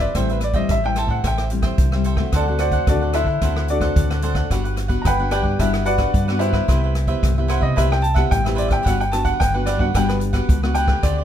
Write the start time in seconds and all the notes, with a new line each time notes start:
Already playing: G3 C4 E4 B4
0.00 B4 C5 D5 E5
0.15 A1 A2 G3 C4 E4 A4 C5 E5 G5, kick, cross-stick, closed hi-hat
0.28 B4 C5 E5 G5, closed hi-hat
0.40 D5, muted cavaquinho stroke, cross-stick, closed hi-hat
0.53 G3 C4 E4 C5 D#5 E5 G5, kick, closed hi-hat
0.69 A1 E3 E5, kick, cross-stick, closed hi-hat
0.84 G3 C4 E4 C5 E5 G5
0.96 A4 C5 E5 G5 A5, cross-stick, closed hi-hat
1.06 A2 C5 E5 G5, kick
1.10 F#5
1.24 A1 A2 A4 C5 E5 G5, kick, cross-stick, closed hi-hat
1.38 C5 E5 G5, cross-stick, closed hi-hat
1.50 G3 C4 E4, muted cavaquinho stroke, closed hi-hat
1.62 C5 E5 G5, kick, cross-stick, closed hi-hat
1.78 C2 E3, kick, closed hi-hat
1.92 G3 C4 E4 C5 E5 G5, cross-stick
2.04 A4 C5 E5 G5, closed hi-hat
2.17 A3 C4 F#4 C5 E5 G5, kick, cross-stick
2.32 D2 D3 D4 A4 C5 D5 F#5 A5, kick, cross-stick, closed hi-hat
2.48 A3 C4 F#4 A4 C5 F#5
2.59 F#4 C5 D5 F#5, muted cavaquinho stroke, cross-stick, closed hi-hat
2.72 A4 C5 F#5, kick, closed hi-hat
2.87 D2 A2 A3 C4 D4 F#4 A4 D5, kick, cross-stick, closed hi-hat
3.01 A4 C5 F#5
3.13 D4 E4 A4 C5 E5 F#5, cross-stick, closed hi-hat
3.24 D3 C5 F#5, kick
3.28 A4
3.41 D2 D3 A3 C4 D4 F#4 A4 C5 F#5, kick, cross-stick, closed hi-hat
3.56 A4 C5 F#5, cross-stick
3.68 D4 F#4 A4 D5, muted cavaquinho stroke, closed hi-hat
3.81 A3 C4 F#4 A4 C5 F#5, kick, cross-stick, closed hi-hat
3.96 D2 A2, kick, closed hi-hat
4.10 A4 C5 F#5, cross-stick, closed hi-hat
4.22 A3 C4 D4 F#4 A4 C5 F#5, closed hi-hat
4.35 A4 C5 F#5, kick, cross-stick, closed hi-hat
4.50 G1 G3 B3 D4 F#4 G4 B4 F#5, kick, cross-stick, closed hi-hat
4.64 G4 B4 F#5, closed hi-hat
4.76 muted cavaquinho stroke, cross-stick, closed hi-hat
4.88 B3 D4 F#4 G4 B4 F#5, kick, closed hi-hat
5.02 G1 D3 A#5, kick, cross-stick, closed hi-hat
5.06 B4 F#5 G5 B5
5.19 B3 D4 F#4 G4 B4 F#5
5.31 D4 G4 B4 D5 F#5 G5, cross-stick, closed hi-hat
5.42 G2 G4 B4 F#5, kick
5.59 G1 G3 B3 D4 E4 F#4 G4 B4 E5 F#5, kick, cross-stick, closed hi-hat
5.73 G4 B4 F#5, cross-stick, closed hi-hat
5.85 F#4 B4 D5 F#5, muted cavaquinho stroke, closed hi-hat
5.98 B3 D4 F#4 G4 B4 F#5, kick, cross-stick, closed hi-hat
6.14 G2 D3, kick, closed hi-hat
6.28 B3 D4 F#4 G4 B4 F#5, cross-stick
6.39 D4 E4 G4 B4 C5 E5 F#5, closed hi-hat
6.53 G4 B4 F#5, kick, cross-stick
6.68 C2 C3 B3 E4 G4 B4 C5 E5, kick, cross-stick, closed hi-hat
6.83 B4 C5 E5
6.95 muted cavaquinho stroke, cross-stick, closed hi-hat
7.07 B3 E4 G4 B4 C5 E5, kick, closed hi-hat
7.23 C2 G2, kick, cross-stick, closed hi-hat
7.38 B3 E4 G4 B4 C5 E5
7.48 E4 B4 C5 E5 F#5, cross-stick, closed hi-hat
7.60 C3 B4 C5 D#5 E5, kick
7.76 C2 C3 B3 E4 G4 B4 C5 E5, kick, cross-stick, closed hi-hat
7.90 B4 C5 E5 G5, cross-stick
8.01 A5, muted cavaquinho stroke, closed hi-hat
8.14 B3 E4 G4 B4 C5 E5 F#5, kick, cross-stick, closed hi-hat
8.31 A1 G2 G5, kick, closed hi-hat
8.44 B3 E4 G4 B4 C5 E5, cross-stick, closed hi-hat
8.55 E4 B4 C5 D5 E5, closed hi-hat
8.68 B4 C5 E5, kick, cross-stick, closed hi-hat
8.72 G5
8.83 G1 G3 B3 D4 G4 B4 F#5, kick, cross-stick, closed hi-hat
8.87 D4 F#4 F#5
9.00 G4 B4 F#5 G5, closed hi-hat
9.12 B3 D4 F#4 A5, muted cavaquinho stroke, cross-stick, closed hi-hat
9.25 G4 B4 F#5, kick, closed hi-hat
9.40 G1 D3 G5, kick, cross-stick, closed hi-hat
9.54 B3 D4 F#4 G4 B4 F#5
9.66 D4 G4 B4 D5 F#5, cross-stick, closed hi-hat
9.77 G2 B3 D4 F#4 G4 B4 F#5, kick
9.94 G1 G3 B3 D4 F#4 G4 B4 F#5 G5, kick, cross-stick, closed hi-hat
10.08 G4 B4 F#5, cross-stick, closed hi-hat
10.20 muted cavaquinho stroke, closed hi-hat
10.33 B3 D4 F#4 G4 B4 F#5, kick, cross-stick, closed hi-hat
10.49 C#2, kick, closed hi-hat
10.63 B3 D4 F#4 G4 B4 F#5, cross-stick
10.75 D4 G4 B4 F#5 G5, closed hi-hat
10.87 A3 C4 G4 B4 F#5, kick, cross-stick
11.03 D2 D3 D4 G4 C5 D5, kick, cross-stick, closed hi-hat
11.18 G4 C5 D5